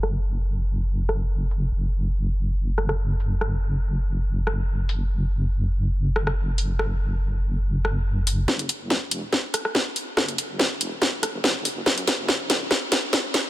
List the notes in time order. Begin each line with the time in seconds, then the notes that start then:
Already playing: F#1
0.03 cross-stick
1.09 cross-stick
1.51 open hi-hat
1.72 F#1
2.78 cross-stick
2.89 cross-stick
3.20 open hi-hat
3.41 cross-stick
4.47 cross-stick
4.89 open hi-hat
6.16 cross-stick
6.27 cross-stick
6.58 open hi-hat
6.79 cross-stick
7.85 cross-stick
8.27 open hi-hat
8.48 F#1, kick, snare
8.59 closed hi-hat
8.69 closed hi-hat
8.90 kick, snare
9.07 F1
9.11 closed hi-hat
9.33 kick, snare
9.54 cross-stick, closed hi-hat
9.65 cross-stick
9.75 kick, snare
9.96 open hi-hat
10.17 F#1, kick, cross-stick, snare
10.28 closed hi-hat
10.38 closed hi-hat
10.59 kick, snare
10.76 F1
10.81 closed hi-hat
11.02 F#1, kick, snare
11.23 cross-stick, closed hi-hat
11.44 kick, snare
11.65 open hi-hat
11.86 F#1, kick, snare
11.98 closed hi-hat
12.08 snare, closed hi-hat
12.28 kick, snare
12.50 snare, closed hi-hat
12.71 kick, snare
12.92 snare, closed hi-hat
13.13 kick, snare
13.34 snare, open hi-hat